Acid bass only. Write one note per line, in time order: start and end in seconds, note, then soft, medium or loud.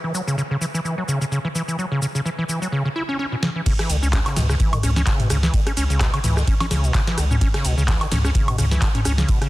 0.04 0.13 E3 medium
0.14 0.22 F#3 medium
0.27 0.36 C#3 loud
0.38 0.42 C#3 loud
0.51 0.57 C#3 loud
0.61 0.66 E3 loud
0.74 0.80 E3 loud
0.85 0.96 E3 medium
0.98 1.04 F#3 medium
1.08 1.19 C#3 loud
1.21 1.25 C#3 loud
1.32 1.39 C#3 loud
1.45 1.48 E3 loud
1.55 1.62 E3 loud
1.68 1.77 E3 medium
1.79 1.86 F#3 medium
1.92 2.00 C#3 loud
2.02 2.06 C#3 loud
2.15 2.21 C#3 loud
2.25 2.30 E3 loud
2.38 2.44 E3 loud
2.49 2.60 E3 medium
2.62 2.68 F#3 medium
2.72 2.83 C#3 loud
2.85 2.89 C#3 loud
2.96 3.03 E4 loud
3.09 3.17 C#4 loud
3.19 3.26 C#4 loud
3.32 3.36 B2 medium
3.43 3.50 C#3 medium
3.56 3.61 E3 medium
3.66 3.73 C#3 loud
3.79 3.91 E3 medium
3.89 3.97 D3 medium
4.03 4.08 C#4 medium
4.13 4.20 C#4 loud
4.26 4.38 C#3 medium
4.36 4.47 B2 medium
4.49 4.55 C#3 loud
4.60 4.74 E3 medium
4.73 4.79 D3 medium
4.83 4.90 C#4 medium
4.96 5.02 C#4 loud
5.07 5.21 C#3 medium
5.20 5.28 B2 medium
5.30 5.37 C#3 loud
5.43 5.55 E3 medium
5.54 5.61 D3 medium
5.67 5.72 C#4 medium
5.77 5.84 C#4 loud
5.90 6.02 C#3 medium
6.00 6.11 B2 medium
6.14 6.19 C#3 loud
6.24 6.39 E3 medium
6.37 6.43 D3 medium
6.47 6.55 C#4 medium
6.60 6.66 C#4 loud
6.71 6.85 C#3 medium
6.84 6.92 B2 medium
6.94 7.01 C#3 loud
7.07 7.19 E3 medium
7.18 7.25 D3 medium
7.31 7.36 C#4 medium
7.41 7.48 C#4 loud
7.54 7.66 C#3 medium
7.65 7.75 B2 medium
7.78 7.83 C#3 loud
7.88 8.03 E3 medium
8.01 8.07 D3 medium
8.11 8.19 C#4 medium
8.24 8.30 C#4 loud
8.35 8.49 C#3 medium
8.48 8.56 B2 medium
8.58 8.65 C#3 loud
8.71 8.83 E3 medium
8.82 8.89 D3 medium
8.95 9.00 C#4 medium
9.05 9.12 C#4 loud
9.18 9.30 C#3 medium
9.28 9.39 B2 medium
9.41 9.47 C#3 loud